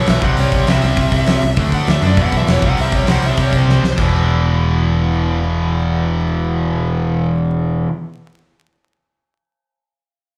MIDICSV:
0, 0, Header, 1, 5, 480
1, 0, Start_track
1, 0, Tempo, 301054
1, 582, Time_signature, 4, 2, 24, 8
1, 16537, End_track
2, 0, Start_track
2, 0, Title_t, "Lead electric guitar"
2, 0, Program_c, 0, 29
2, 148, Note_on_c, 0, 76, 83
2, 382, Note_off_c, 0, 76, 0
2, 382, Note_on_c, 0, 78, 82
2, 595, Note_off_c, 0, 78, 0
2, 637, Note_on_c, 0, 73, 84
2, 1075, Note_off_c, 0, 73, 0
2, 1118, Note_on_c, 0, 76, 100
2, 2484, Note_off_c, 0, 76, 0
2, 2784, Note_on_c, 0, 78, 104
2, 2994, Note_off_c, 0, 78, 0
2, 3036, Note_on_c, 0, 76, 91
2, 3295, Note_off_c, 0, 76, 0
2, 3295, Note_on_c, 0, 74, 98
2, 3490, Note_off_c, 0, 74, 0
2, 3535, Note_on_c, 0, 78, 102
2, 3730, Note_off_c, 0, 78, 0
2, 3772, Note_on_c, 0, 76, 76
2, 4015, Note_off_c, 0, 76, 0
2, 4015, Note_on_c, 0, 73, 84
2, 4210, Note_off_c, 0, 73, 0
2, 4239, Note_on_c, 0, 78, 83
2, 4441, Note_off_c, 0, 78, 0
2, 4481, Note_on_c, 0, 76, 87
2, 4682, Note_off_c, 0, 76, 0
2, 4727, Note_on_c, 0, 73, 91
2, 4926, Note_off_c, 0, 73, 0
2, 4958, Note_on_c, 0, 78, 92
2, 5161, Note_off_c, 0, 78, 0
2, 5198, Note_on_c, 0, 76, 89
2, 5448, Note_off_c, 0, 76, 0
2, 5448, Note_on_c, 0, 73, 92
2, 5683, Note_off_c, 0, 73, 0
2, 5683, Note_on_c, 0, 72, 92
2, 6349, Note_off_c, 0, 72, 0
2, 16537, End_track
3, 0, Start_track
3, 0, Title_t, "Distorted electric guitar"
3, 0, Program_c, 1, 30
3, 0, Note_on_c, 1, 40, 79
3, 0, Note_on_c, 1, 47, 94
3, 0, Note_on_c, 1, 52, 104
3, 323, Note_off_c, 1, 40, 0
3, 325, Note_off_c, 1, 47, 0
3, 331, Note_on_c, 1, 48, 83
3, 346, Note_off_c, 1, 52, 0
3, 355, Note_on_c, 1, 55, 87
3, 374, Note_on_c, 1, 60, 92
3, 1041, Note_off_c, 1, 48, 0
3, 1053, Note_off_c, 1, 55, 0
3, 1061, Note_on_c, 1, 48, 79
3, 1062, Note_off_c, 1, 60, 0
3, 1089, Note_on_c, 1, 55, 85
3, 1104, Note_on_c, 1, 60, 91
3, 2244, Note_off_c, 1, 48, 0
3, 2258, Note_off_c, 1, 55, 0
3, 2266, Note_off_c, 1, 60, 0
3, 2509, Note_on_c, 1, 50, 91
3, 2535, Note_on_c, 1, 57, 90
3, 2556, Note_on_c, 1, 62, 102
3, 3205, Note_off_c, 1, 62, 0
3, 3208, Note_off_c, 1, 50, 0
3, 3221, Note_off_c, 1, 57, 0
3, 3224, Note_on_c, 1, 62, 89
3, 3250, Note_on_c, 1, 57, 66
3, 3272, Note_on_c, 1, 50, 62
3, 3446, Note_off_c, 1, 62, 0
3, 3459, Note_off_c, 1, 57, 0
3, 3459, Note_on_c, 1, 40, 84
3, 3470, Note_off_c, 1, 50, 0
3, 3479, Note_on_c, 1, 47, 88
3, 3505, Note_on_c, 1, 52, 99
3, 4163, Note_off_c, 1, 40, 0
3, 4172, Note_off_c, 1, 47, 0
3, 4178, Note_on_c, 1, 48, 86
3, 4200, Note_off_c, 1, 52, 0
3, 4207, Note_on_c, 1, 55, 98
3, 4226, Note_on_c, 1, 60, 99
3, 4883, Note_off_c, 1, 48, 0
3, 4897, Note_off_c, 1, 55, 0
3, 4901, Note_on_c, 1, 48, 74
3, 4907, Note_off_c, 1, 60, 0
3, 4921, Note_on_c, 1, 55, 77
3, 4941, Note_on_c, 1, 60, 84
3, 6084, Note_off_c, 1, 48, 0
3, 6094, Note_off_c, 1, 55, 0
3, 6104, Note_off_c, 1, 60, 0
3, 6328, Note_on_c, 1, 40, 93
3, 6365, Note_on_c, 1, 47, 95
3, 6389, Note_on_c, 1, 52, 101
3, 12565, Note_off_c, 1, 40, 0
3, 12584, Note_off_c, 1, 47, 0
3, 12596, Note_off_c, 1, 52, 0
3, 16537, End_track
4, 0, Start_track
4, 0, Title_t, "Picked electric bass"
4, 0, Program_c, 2, 34
4, 121, Note_on_c, 2, 35, 87
4, 261, Note_off_c, 2, 35, 0
4, 351, Note_on_c, 2, 36, 88
4, 494, Note_off_c, 2, 36, 0
4, 593, Note_on_c, 2, 36, 86
4, 736, Note_off_c, 2, 36, 0
4, 832, Note_on_c, 2, 36, 91
4, 974, Note_off_c, 2, 36, 0
4, 1084, Note_on_c, 2, 36, 88
4, 1223, Note_off_c, 2, 36, 0
4, 1332, Note_on_c, 2, 36, 86
4, 1468, Note_off_c, 2, 36, 0
4, 1551, Note_on_c, 2, 36, 92
4, 1693, Note_off_c, 2, 36, 0
4, 1783, Note_on_c, 2, 36, 86
4, 1928, Note_off_c, 2, 36, 0
4, 2037, Note_on_c, 2, 36, 86
4, 2177, Note_off_c, 2, 36, 0
4, 2282, Note_on_c, 2, 36, 82
4, 2420, Note_off_c, 2, 36, 0
4, 2505, Note_on_c, 2, 38, 92
4, 2795, Note_off_c, 2, 38, 0
4, 2993, Note_on_c, 2, 38, 83
4, 3134, Note_off_c, 2, 38, 0
4, 3221, Note_on_c, 2, 42, 83
4, 3462, Note_on_c, 2, 28, 96
4, 3486, Note_off_c, 2, 42, 0
4, 3606, Note_off_c, 2, 28, 0
4, 3707, Note_on_c, 2, 35, 88
4, 3850, Note_off_c, 2, 35, 0
4, 3954, Note_on_c, 2, 28, 86
4, 4094, Note_off_c, 2, 28, 0
4, 4184, Note_on_c, 2, 36, 92
4, 4328, Note_off_c, 2, 36, 0
4, 4423, Note_on_c, 2, 36, 86
4, 4567, Note_off_c, 2, 36, 0
4, 4666, Note_on_c, 2, 36, 88
4, 4809, Note_off_c, 2, 36, 0
4, 4914, Note_on_c, 2, 36, 86
4, 5054, Note_off_c, 2, 36, 0
4, 5146, Note_on_c, 2, 36, 88
4, 5289, Note_off_c, 2, 36, 0
4, 5390, Note_on_c, 2, 36, 90
4, 5532, Note_off_c, 2, 36, 0
4, 5626, Note_on_c, 2, 36, 82
4, 5769, Note_off_c, 2, 36, 0
4, 5858, Note_on_c, 2, 36, 84
4, 6004, Note_off_c, 2, 36, 0
4, 6097, Note_on_c, 2, 36, 81
4, 6243, Note_off_c, 2, 36, 0
4, 6345, Note_on_c, 2, 28, 89
4, 12511, Note_off_c, 2, 28, 0
4, 16537, End_track
5, 0, Start_track
5, 0, Title_t, "Drums"
5, 103, Note_on_c, 9, 46, 77
5, 122, Note_on_c, 9, 38, 120
5, 263, Note_off_c, 9, 46, 0
5, 282, Note_off_c, 9, 38, 0
5, 344, Note_on_c, 9, 46, 55
5, 348, Note_on_c, 9, 36, 101
5, 504, Note_off_c, 9, 46, 0
5, 507, Note_off_c, 9, 36, 0
5, 587, Note_on_c, 9, 46, 74
5, 747, Note_off_c, 9, 46, 0
5, 829, Note_on_c, 9, 36, 86
5, 829, Note_on_c, 9, 46, 65
5, 988, Note_off_c, 9, 46, 0
5, 989, Note_off_c, 9, 36, 0
5, 1070, Note_on_c, 9, 46, 80
5, 1090, Note_on_c, 9, 38, 111
5, 1230, Note_off_c, 9, 46, 0
5, 1249, Note_off_c, 9, 38, 0
5, 1306, Note_on_c, 9, 46, 57
5, 1466, Note_off_c, 9, 46, 0
5, 1543, Note_on_c, 9, 46, 79
5, 1548, Note_on_c, 9, 36, 109
5, 1702, Note_off_c, 9, 46, 0
5, 1708, Note_off_c, 9, 36, 0
5, 1782, Note_on_c, 9, 46, 57
5, 1786, Note_on_c, 9, 36, 81
5, 1942, Note_off_c, 9, 46, 0
5, 1945, Note_off_c, 9, 36, 0
5, 2016, Note_on_c, 9, 46, 78
5, 2035, Note_on_c, 9, 38, 111
5, 2176, Note_off_c, 9, 46, 0
5, 2195, Note_off_c, 9, 38, 0
5, 2262, Note_on_c, 9, 46, 58
5, 2422, Note_off_c, 9, 46, 0
5, 2496, Note_on_c, 9, 46, 77
5, 2505, Note_on_c, 9, 36, 112
5, 2655, Note_off_c, 9, 46, 0
5, 2664, Note_off_c, 9, 36, 0
5, 2744, Note_on_c, 9, 46, 60
5, 2745, Note_on_c, 9, 36, 80
5, 2904, Note_off_c, 9, 36, 0
5, 2904, Note_off_c, 9, 46, 0
5, 2983, Note_on_c, 9, 46, 73
5, 3002, Note_on_c, 9, 38, 110
5, 3142, Note_off_c, 9, 46, 0
5, 3161, Note_off_c, 9, 38, 0
5, 3221, Note_on_c, 9, 46, 55
5, 3380, Note_off_c, 9, 46, 0
5, 3461, Note_on_c, 9, 46, 70
5, 3464, Note_on_c, 9, 36, 110
5, 3620, Note_off_c, 9, 46, 0
5, 3623, Note_off_c, 9, 36, 0
5, 3701, Note_on_c, 9, 46, 50
5, 3703, Note_on_c, 9, 36, 86
5, 3861, Note_off_c, 9, 46, 0
5, 3863, Note_off_c, 9, 36, 0
5, 3942, Note_on_c, 9, 46, 77
5, 3961, Note_on_c, 9, 38, 108
5, 4102, Note_off_c, 9, 46, 0
5, 4121, Note_off_c, 9, 38, 0
5, 4180, Note_on_c, 9, 46, 53
5, 4182, Note_on_c, 9, 36, 104
5, 4339, Note_off_c, 9, 46, 0
5, 4341, Note_off_c, 9, 36, 0
5, 4420, Note_on_c, 9, 46, 75
5, 4579, Note_off_c, 9, 46, 0
5, 4655, Note_on_c, 9, 46, 59
5, 4661, Note_on_c, 9, 36, 89
5, 4814, Note_off_c, 9, 46, 0
5, 4821, Note_off_c, 9, 36, 0
5, 4896, Note_on_c, 9, 46, 80
5, 4915, Note_on_c, 9, 38, 100
5, 5056, Note_off_c, 9, 46, 0
5, 5075, Note_off_c, 9, 38, 0
5, 5138, Note_on_c, 9, 46, 57
5, 5297, Note_off_c, 9, 46, 0
5, 5376, Note_on_c, 9, 46, 75
5, 5383, Note_on_c, 9, 36, 106
5, 5535, Note_off_c, 9, 46, 0
5, 5543, Note_off_c, 9, 36, 0
5, 5623, Note_on_c, 9, 36, 84
5, 5624, Note_on_c, 9, 46, 58
5, 5783, Note_off_c, 9, 36, 0
5, 5784, Note_off_c, 9, 46, 0
5, 5886, Note_on_c, 9, 38, 60
5, 6046, Note_off_c, 9, 38, 0
5, 6121, Note_on_c, 9, 38, 83
5, 6280, Note_off_c, 9, 38, 0
5, 6338, Note_on_c, 9, 49, 78
5, 6342, Note_on_c, 9, 36, 99
5, 6497, Note_off_c, 9, 49, 0
5, 6502, Note_off_c, 9, 36, 0
5, 16537, End_track
0, 0, End_of_file